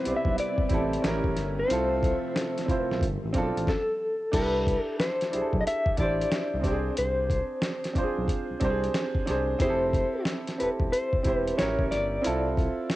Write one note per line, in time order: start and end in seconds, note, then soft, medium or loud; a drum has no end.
0.00 0.99 C3 medium
0.00 1.66 G3 medium
0.00 0.12 B3 soft
0.00 0.09 C4 loud
0.00 0.98 C4 medium
0.00 0.04 E4 loud
0.00 1.01 E4 medium
0.00 0.06 G4 medium
0.00 1.05 B4 loud
0.00 0.16 C5 medium
0.04 0.14 B1 soft
0.04 0.63 E4 medium
0.04 0.64 G4 medium
0.04 0.65 D5 medium
0.04 closed hi-hat medium
0.09 0.66 C4 medium
0.16 0.38 E5 loud
0.25 0.35 B1 medium
0.25 kick medium
0.38 1.21 D5 medium
0.38 closed hi-hat medium
0.58 0.63 A1 soft
0.58 kick loud
0.69 0.97 A1 medium
0.69 1.02 C4 medium
0.69 1.02 E4 medium
0.69 1.04 G4 medium
0.69 kick medium
0.69 closed hi-hat medium
0.74 1.05 A4 medium
0.93 closed hi-hat soft
1.02 1.21 A1 loud
1.02 2.99 A3 medium
1.02 1.62 C#4 medium
1.02 1.68 C#4 medium
1.02 1.63 E4 medium
1.02 1.63 G4 medium
1.02 snare loud
1.02 closed hi-hat medium
1.07 1.64 A#4 medium
1.24 1.34 A1 loud
1.24 kick medium
1.36 1.64 G1 medium
1.36 snare soft
1.36 closed hi-hat medium
1.59 2.85 C5 medium
1.68 2.13 C2 loud
1.68 2.99 C3 medium
1.68 3.64 F3 medium
1.68 2.57 C4 medium
1.68 2.58 E4 medium
1.68 2.59 F4 medium
1.68 2.99 E5 medium
1.68 closed hi-hat loud
1.73 2.60 A4 loud
2.03 kick loud
2.03 closed hi-hat medium
2.36 snare loud
2.36 closed hi-hat medium
2.58 snare soft
2.58 closed hi-hat medium
2.66 2.77 B1 medium
2.66 3.00 C4 medium
2.66 3.01 E4 medium
2.66 3.02 F4 medium
2.66 kick loud
2.66 closed hi-hat medium
2.71 3.02 C5 medium
2.85 3.52 A#4 medium
2.91 3.00 B1 medium
2.91 snare soft
3.01 3.18 G1 loud
3.01 3.67 G3 medium
3.01 3.67 C4 medium
3.01 kick medium
3.01 closed hi-hat medium
3.24 3.33 A1 medium
3.33 3.51 B1 medium
3.33 3.66 C4 loud
3.33 3.67 D4 medium
3.33 3.68 F4 medium
3.33 kick medium
3.33 closed hi-hat medium
3.38 3.69 A4 medium
3.57 3.66 A1 medium
3.57 closed hi-hat soft
3.67 4.36 A4 medium
3.67 kick loud
3.67 snare medium
4.32 4.77 C2 loud
4.32 5.21 D4 medium
4.32 5.22 E4 medium
4.32 5.23 G4 medium
4.32 4.85 B4 medium
4.32 kick loud
4.32 closed hi-hat loud
4.32 crash loud
4.36 5.23 A4 loud
4.67 kick medium
4.67 closed hi-hat medium
4.85 4.99 A4 medium
5.00 5.60 C5 medium
5.00 snare loud
5.00 closed hi-hat medium
5.21 snare soft
5.21 closed hi-hat medium
5.30 5.90 D4 medium
5.30 5.91 E4 medium
5.30 5.92 G4 medium
5.30 closed hi-hat medium
5.35 5.42 B1 soft
5.35 5.42 G#4 medium
5.42 5.96 A4 medium
5.53 5.63 B1 medium
5.53 kick medium
5.61 5.65 D#5 medium
5.67 6.00 E5 loud
5.67 closed hi-hat medium
5.86 5.91 A1 soft
5.86 kick loud
5.97 6.25 A1 medium
5.97 6.62 D4 medium
5.97 6.64 E4 medium
5.97 6.63 G4 medium
5.97 6.98 D5 loud
5.97 kick medium
5.97 closed hi-hat medium
6.02 6.65 C5 medium
6.22 closed hi-hat soft
6.32 snare loud
6.32 closed hi-hat medium
6.54 6.63 C2 loud
6.61 6.91 C2 loud
6.61 7.80 C4 medium
6.61 7.81 D4 medium
6.61 6.72 G4 medium
6.61 kick medium
6.61 snare soft
6.61 closed hi-hat medium
6.67 7.82 C5 medium
6.71 7.85 G#4 medium
6.97 7.41 C2 loud
6.97 8.91 C5 medium
6.97 closed hi-hat loud
7.30 kick loud
7.30 closed hi-hat medium
7.62 snare loud
7.62 closed hi-hat medium
7.84 snare soft
7.84 closed hi-hat soft
7.93 8.04 B1 medium
7.93 8.54 C4 medium
7.93 8.54 D4 medium
7.93 8.04 F4 medium
7.93 kick medium
7.93 closed hi-hat medium
7.98 8.56 C5 medium
8.03 8.58 G#4 medium
8.18 8.27 B1 medium
8.28 kick medium
8.28 closed hi-hat medium
8.50 8.55 C2 soft
8.60 8.88 C2 medium
8.60 9.20 C4 medium
8.60 9.20 D4 medium
8.60 8.70 G4 medium
8.60 kick medium
8.60 closed hi-hat medium
8.65 9.22 C5 loud
8.70 9.25 G#4 medium
8.84 closed hi-hat soft
8.94 snare loud
8.94 closed hi-hat medium
9.15 kick medium
9.26 9.55 C2 medium
9.26 9.56 C4 medium
9.26 9.57 D4 medium
9.26 9.58 G#4 medium
9.26 snare soft
9.26 closed hi-hat medium
9.31 9.59 C5 loud
9.59 10.04 F1 medium
9.59 10.48 C4 loud
9.59 10.49 E4 medium
9.59 10.50 G4 medium
9.59 10.23 C5 loud
9.59 kick loud
9.59 closed hi-hat loud
9.64 9.70 G#4 medium
9.70 10.54 A4 medium
9.93 kick loud
9.93 closed hi-hat medium
10.25 snare loud
10.25 closed hi-hat medium
10.47 snare soft
10.47 closed hi-hat medium
10.58 10.69 E1 soft
10.58 11.18 C4 medium
10.58 11.19 E4 medium
10.58 11.19 G4 medium
10.58 10.69 B4 medium
10.58 closed hi-hat medium
10.63 11.20 A4 medium
10.79 10.90 E1 loud
10.79 kick medium
10.92 11.36 C5 medium
10.92 closed hi-hat medium
11.13 11.19 E1 soft
11.13 kick loud
11.23 11.52 E1 medium
11.23 11.57 C4 medium
11.23 11.57 E4 medium
11.23 11.59 G4 medium
11.23 kick medium
11.23 closed hi-hat medium
11.28 11.60 C5 medium
11.36 11.54 B4 medium
11.47 closed hi-hat soft
11.57 12.17 C#4 medium
11.57 12.17 E4 medium
11.57 12.18 G4 medium
11.57 11.89 C#5 medium
11.57 snare loud
11.57 closed hi-hat medium
11.61 11.76 A1 medium
11.61 12.19 A#4 medium
11.79 11.89 A1 loud
11.79 kick medium
11.91 12.19 G1 medium
11.91 12.53 D5 loud
11.91 snare soft
11.91 closed hi-hat medium
12.22 12.96 C4 medium
12.22 12.96 E4 medium
12.22 12.96 F4 medium
12.22 closed hi-hat loud
12.26 12.68 C2 loud
12.26 12.96 A4 loud
12.57 kick loud
12.57 closed hi-hat medium
12.90 snare loud
12.90 closed hi-hat medium